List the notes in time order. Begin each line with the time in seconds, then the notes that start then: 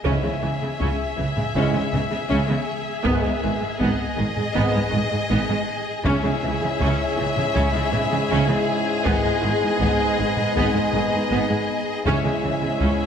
0.05 C#2 G#2 C#3 G#3 C#4 E4 G#4 E5, taiko
0.23 C#3 G#3
0.42 C#2 C#3 E3
0.61 C#3 G#3
0.80 C#2 C#3 C#4, taiko
1.17 C#2 C#3 E3
1.36 C#3 G#3, taiko low-mid
1.55 C#2 G#2 C#3 G#3 C#4 E4, taiko
1.74 C#3 G#3
1.92 C#2 C#3 E3, taiko low-mid
2.10 C#3 G#3
2.29 C#2 C#3 C#4
2.47 C#3 G#3
3.04 G#1 G#2 D#3 G#3 B3, taiko
3.22 G#2 G#3
3.42 G#1 G#2 D#3
3.60 G#2 G#3
3.79 G#1 G#2 B3 D#5, taiko
4.17 G#1 G#2 D#3
4.35 G#2 G#3, taiko low-mid
4.54 G#1 G#2 G#3 B3 D#4, taiko
4.72 G#2 G#3
4.90 G#1 G#2 D#3, taiko low-mid
5.10 G#2 G#3
5.29 G#1 G#2 B3
5.49 G#2 G#3
6.05 C#2 G#2 C#3 G#3 C#4 E4 G#4 E5, taiko
6.24 C#3 G#3
6.42 C#2 C#3 E3
6.62 C#3 G#3
6.80 C#2 C#3 C#4, taiko
7.17 C#2 C#3 E3
7.36 C#3 G#3, taiko low-mid
7.54 C#2 C#3 C#4, taiko
7.72 C#3 G#3
7.92 C#2 C#3 E3, taiko low-mid
8.12 C#3 G#3
8.30 C#2 C#3 C#4
8.49 C#3 G#3
9.05 G#1 G#2 B3 D#5, taiko
9.24 G#2 G#3
9.41 G#1 G#2 D#3
9.61 G#2 G#3
9.80 G#1 G#2 B3 D#4, taiko
10.18 G#1 G#2 D#3
10.36 G#2 G#3, taiko low-mid
10.56 G#1 G#2 B3, taiko
10.75 G#2 G#3
10.93 G#1 G#2 D#3, taiko low-mid
11.12 G#2 G#3
11.31 G#1 G#2 B3
11.49 G#2 G#3
12.05 C#2 G#2 C#3 G#3 C#4 E4 G#4 E5, taiko, riser
12.24 C#3 G#3
12.43 C#2 C#3 E3
12.61 C#3 G#3
12.79 C#2 C#3 C#4, taiko